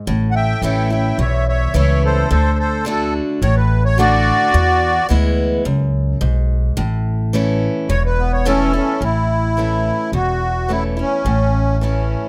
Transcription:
0.07 A1 A2
0.31 F#5
0.35 E5 G5
0.62 A1 E3 A3 C#4 E4 E5 G5
0.90 C#4 E4 E5 G5
1.18 B1 E2 C#5 E5
1.48 C#5 E5
1.74 C#2 E3 A3 C#4 E4 C#5
1.78 E5
2.05 A4 C5
2.31 D2 D3 A4 C5
2.59 A4 C5
2.85 D3 A3 D4 F#4 A4
3.42 A1 A2 C#5
3.56 B4
3.85 C#5
3.98 D3 A3 D4 F#4 D5
4.54 E2
5.09 D2 E3 G#3 B3 E4
5.65 C#2 F#2
6.21 B1 G#2
6.77 A1 A2
7.33 E3 A3 C#4 E4
7.89 E1 E2 C#5
8.06 B4
8.18 B3
8.33 C#5
8.45 E3 A3 C#4 E4 A4
8.73 C#4 E4
9.01 A1 A2 E4
9.57 E3 A3 C#4 E4
10.12 E1 E2 F#4
10.68 E3 A3 C#4 E4
10.97 C#4 E4
11.25 A1 A2
11.81 E3 A3 C#4 E4

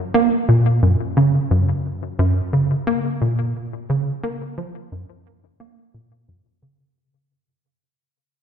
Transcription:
0.14 A#3
0.48 A#2
0.82 F#2
1.17 C#3
1.51 F#2
2.19 F#2
2.53 C#3
2.87 A#3
3.21 A#2
3.90 C#3
4.23 A#3
4.58 F3
4.92 F#2
5.60 A#3
5.94 A#2
6.28 F#2
6.62 C#3

